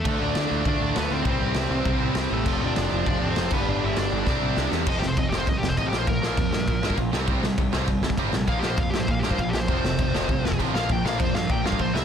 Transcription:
<<
  \new Staff \with { instrumentName = "Lead electric guitar" } { \time 4/4 \key c \major \tempo 4 = 199 <a a'>8 <d' d''>4. <d' d''>4 <b b'>8 <c' c''>8 | <c' c''>2.~ <c' c''>8 <a a'>8~ | <a a'>8 <d' d''>4. <d' d''>8. <c' c''>8. <b b'>8 | <d' d''>8 <e' e''>8 <d' d''>2~ <d' d''>8 r8 |
\key bes \lydian \tuplet 3/2 { ees''8 g'8 c''8 ees''8 g'8 c''8 ees''8 g'8 c''8 ees''8 g'8 c''8 } | bes'2. r4 | r1 | \tuplet 3/2 { f''8 g'8 c''8 f''8 g'8 c''8 f''8 g'8 c''8 f''8 g'8 c''8 } |
c''2. r8 f''8 | g''8 f''8 c''8 f''8 g''8 f''8 c''8 e''8 | }
  \new Staff \with { instrumentName = "Distorted electric guitar" } { \time 4/4 \key c \major <d a d' f'>2~ <d a d' f'>8 <d a d' f'>8 <d a d' f'>4 | <c e g c' e'>2~ <c e g c' e'>8 <c e g c' e'>8 <c e g c' e'>4 | <f a c' f'>2~ <f a c' f'>8 <f a c' f'>8 <f a c' f'>8 <g, d g b d'>8~ | <g, d g b d'>2 <c g c' e'>2 |
\key bes \lydian r1 | r1 | r1 | r1 |
<f, c f a c'>2.~ <f, c f a c'>8 <bes, f bes d'>8~ | <bes, f bes d'>2. <bes, f bes d'>8 <c g c' e'>8 | }
  \new Staff \with { instrumentName = "Distorted electric guitar" } { \clef bass \time 4/4 \key c \major <d a d'>2 <d a d'>2 | <c g c'>2 <c g c'>2 | <f, c f>2 <f, c f>4. <g, d g>8~ | <g, d g>4. <g, d g>8 <c g c'>2 |
\key bes \lydian <f, c f>8 <f, c>8 <f, c>8 <f, c f>8 <f, c>8 <f, c>8 <f, c f>8 <bes, f bes>8 | <bes, f>8 <bes, f bes>8 <bes, f>8 <bes, f>8 <bes, f>8 <bes, f bes>8 <bes, f>8 <c g c'>8 | <c g c'>8 <c g>8 <c g>8 <c g c'>8 <c g>8 <c g>8 <c g c'>8 <c g>8 | <bes, f bes>8 <bes, f bes>8 <bes, f>8 <bes, f>8 <bes, f>8 <bes, f bes>8 <bes, f>8 <bes, f>8 |
<f, c f>8 <f, c>8 <f, c>8 <f, c f>8 <f, c>8 <f, c>8 <f, c f>8 <bes, f bes>8 | <bes, f>8 <bes, f bes>8 <bes, f>8 <bes, f>8 <bes, f>8 <bes, f bes>8 <bes, f>8 <c g c'>8 | }
  \new Staff \with { instrumentName = "Overdriven electric guitar" } { \clef bass \time 4/4 \key c \major <d a d'>1 | <c g c'>1 | <f, c f>2.~ <f, c f>8 <g, d g>8~ | <g, d g>2 <c g c'>2 |
\key bes \lydian <f, c f>8 <f, c>8 <f, c>8 <f, c f>8 <f, c>8 <f, c>8 <f, c f>8 <bes, f bes>8 | <bes, f>8 <bes, f bes>8 <bes, f>8 <bes, f>8 <bes, f>8 <bes, f bes>8 <bes, f>8 <c g c'>8 | <c g c'>8 <c g>8 <c g>8 <c g c'>8 <c g>8 <c g>8 <c g c'>8 <c g>8 | <bes, f bes>8 <bes, f bes>8 <bes, f>8 <bes, f>8 <bes, f>8 <bes, f bes>8 <bes, f>8 <bes, f>8 |
<f, c f>8 <f, c>8 <f, c>8 <f, c f>8 <f, c>8 <f, c>8 <f, c f>8 <bes, f bes>8 | <bes, f>8 <bes, f bes>8 <bes, f>8 <bes, f>8 <bes, f>8 <bes, f bes>8 <bes, f>8 <c g c'>8 | }
  \new Staff \with { instrumentName = "Picked electric bass" } { \clef bass \time 4/4 \key c \major d,8 d,8 d,8 d,8 d,8 d,8 d,8 d,8 | c,8 c,8 c,8 c,8 c,8 c,8 c,8 a,,8 | f,,8 f,,8 f,,8 f,,8 f,,8 f,,8 f,,8 g,,8 | g,,8 g,,8 g,,8 g,,8 c,8 c,8 c,8 e,8 |
\key bes \lydian f,,8 f,,8 f,,8 f,,8 c,8 f,,8 a,,8 bes,,8 | bes,,8 bes,,8 f,8 g,8 bes,8 g,8 bes,,8 c,8 | c,8 c,8 c,8 c,8 g,,8 c,8 g,,8 bes,,8 | bes,,8 bes,,8 f,8 g,8 bes,8 g,8 bes,,8 bes,,8 |
f,,8 f,,8 f,,8 f,,8 c,8 f,,8 a,,8 bes,,8 | bes,,8 bes,,8 f,8 g,8 bes,8 g,8 bes,,8 c,8 | }
  \new DrumStaff \with { instrumentName = "Drums" } \drummode { \time 4/4 <cymc bd>4 <cymr sn>4 <bd cymr>4 <cymr sn>4 | <bd cymr>4 <cymr sn>4 <bd cymr>4 <cymr sn>4 | <cymc bd>4 <cymr sn>4 <bd cymr>4 <cymr sn>8 <cymc bd>8 | r4 <cymr sn>4 <bd sn>4 sn8 sn8 |
<cymc bd>8 sn8 <cymc bd>8 sn8 <cymc bd>8 sn16 bd16 <cymc bd>8 sn8 | <cymc bd>8 sn8 <cymc bd>8 sn8 <cymc bd>8 sn16 bd16 <cymc bd>8 sn8 | <cymc bd>8 sn8 <cymc bd>8 sn8 <cymc bd>8 sn16 bd16 <cymc bd>8 sn8 | <cymc bd>8 sn8 <cymc bd>8 sn8 <cymc bd>8 sn16 bd16 <cymc bd>8 sn8 |
<cymc bd>8 sn8 <cymc bd>8 sn8 <cymc bd>8 sn16 bd16 <cymc bd>8 sn8 | <cymc bd>8 sn8 <cymc bd>8 sn8 <cymc bd>8 sn16 bd16 <cymc bd>8 sn8 | }
>>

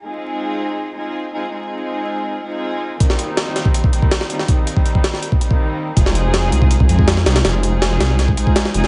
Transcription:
<<
  \new Staff \with { instrumentName = "String section" } { \time 4/4 \key f \minor \tempo 4 = 162 <aes c' ees' f' aes'>2~ <aes c' ees' f' aes'>8 <aes c' ees' f' aes'>4 <aes c' ees' f' aes'>8 | <aes c' ees' f' aes'>2~ <aes c' ees' f' aes'>8 <aes c' ees' f' aes'>4. | <ees g bes c' ees'>2~ <ees g bes c' ees'>8 <ees g bes c' ees'>4 <ees g bes c' ees'>8 | <ees g bes c' ees'>2~ <ees g bes c' ees'>8 <ees g bes c' ees'>4. |
<aes c' ees' f' aes'>2~ <aes c' ees' f' aes'>8 <aes c' ees' f' aes'>4 <aes c' ees' f' aes'>8 | <aes c' ees' f' aes'>2~ <aes c' ees' f' aes'>8 <aes c' ees' f' aes'>4 <aes c' ees' f' aes'>8 | }
  \new Staff \with { instrumentName = "Detuned saw bass" } { \clef bass \time 4/4 \key f \minor r1 | r1 | r1 | r1 |
f,,4. c,4 f,4 c,8 | f,,4. c,4 r4 f,,8 | }
  \new DrumStaff \with { instrumentName = "Drums" } \drummode { \time 4/4 r4 r4 r4 r4 | r4 r4 r4 r4 | <hh bd>16 sn16 hh8 <hh sn>8 <hh sn>16 bd16 hh16 bd16 hh16 bd16 <hh sn>16 sn16 hh16 sn16 | <hh bd>8 hh16 bd16 hh16 bd16 <hh sn>16 sn16 hh16 bd16 hh16 bd16 r4 |
<hh bd>16 sn16 hh8 <hh sn>8 hh16 bd16 hh16 bd16 hh16 bd16 <hh sn>16 sn16 <hh sn>16 <hh sn>16 | <hh sn>8 hh8 <hh sn>8 <hh sn>8 <hh sn>16 bd16 hh16 bd16 <hh sn>16 sn16 hh16 sn16 | }
>>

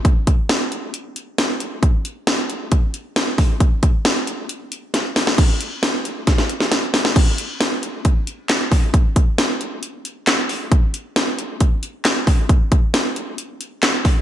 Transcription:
\new DrumStaff \with { instrumentName = "Drums" } \drummode { \time 4/4 \tempo 4 = 135 <hh bd>8 <hh bd>8 <hh sn>8 hh8 hh8 hh8 <hh sn>8 hh8 | <hh bd>8 hh8 <hh sn>8 hh8 <hh bd>8 hh8 <hh sn>8 <hho bd>8 | <hh bd>8 <hh bd>8 <hh sn>8 hh8 hh8 hh8 <hh sn>8 <hho sn>16 sn16 | <cymc hh bd>8 hh8 <hh sn>8 hh8 <hh bd sn>16 sn16 hh16 sn16 <hh sn>8 <hho sn>16 sn16 |
<cymc hh bd>8 hh8 <hh sn>8 hh8 <hh bd>8 hh8 <hc hh sn>8 <hho bd>8 | <hh bd>8 <hh bd>8 <hh sn>8 hh8 hh8 hh8 <hc hh sn>8 hho8 | <hh bd>8 hh8 <hh sn>8 hh8 <hh bd>8 hh8 <hc hh sn>8 <hho bd>8 | <hh bd>8 <hh bd>8 <hh sn>8 hh8 hh8 hh8 <hc hh sn>8 <hho bd>8 | }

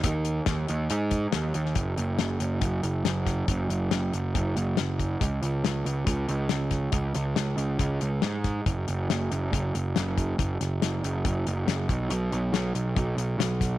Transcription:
<<
  \new Staff \with { instrumentName = "Picked electric bass" } { \clef bass \time 4/4 \key cis \mixolydian \tempo 4 = 139 dis,4 dis,8 dis,8 gis,4 dis,8 dis,8 | fis,,8 fis,,8 fis,,8 fis,,8 fis,,8 fis,,8 fis,,4 | fis,,8 fis,,8 fis,,8 fis,,8 fis,,8 fis,,8 fis,,4 | cis,8 cis,8 cis,8 cis,8 cis,8 cis,8 cis,4 |
cis,8 cis,8 cis,8 cis,8 cis,8 cis,8 gis,4 | fis,,8 fis,,8 fis,,8 fis,,8 fis,,8 fis,,8 fis,,4 | fis,,8 fis,,8 fis,,8 fis,,8 fis,,8 fis,,8 fis,,8 b,,8 | b,,8 b,,8 b,,8 b,,8 b,,8 b,,8 b,,4 | }
  \new DrumStaff \with { instrumentName = "Drums" } \drummode { \time 4/4 <hh bd>8 hh8 <hh bd sn>8 hh8 hh8 <hh bd>8 <hh sn>8 hh16 sn16 | <hh bd>8 hh8 <hh sn>8 hh8 <hh bd>8 hh8 <hh sn>8 <hh bd sn>8 | <hh bd>8 hh8 <hh sn>8 hh8 <hh bd>8 hh8 <hh sn>8 <hh bd>8 | <hh bd>8 hh8 <hh sn>8 hh8 <hh bd>8 hh8 <hh sn>8 <hh bd sn>8 |
<hh bd>8 <hh sn>8 <hh sn>8 hh8 <hh bd>8 hh8 <hh sn>8 <hh bd sn>8 | <hh bd>8 hh8 <hh sn>8 hh8 <hh bd>8 hh8 <hh sn>8 <hh bd>8 | <hh bd>8 <hh sn>8 <hh sn>8 hh8 <hh bd>8 hh8 <hh sn>8 <hh bd>8 | hh8 hh8 <hh sn>8 hh8 <hh bd>8 hh8 <hh sn>8 <hh bd sn>8 | }
>>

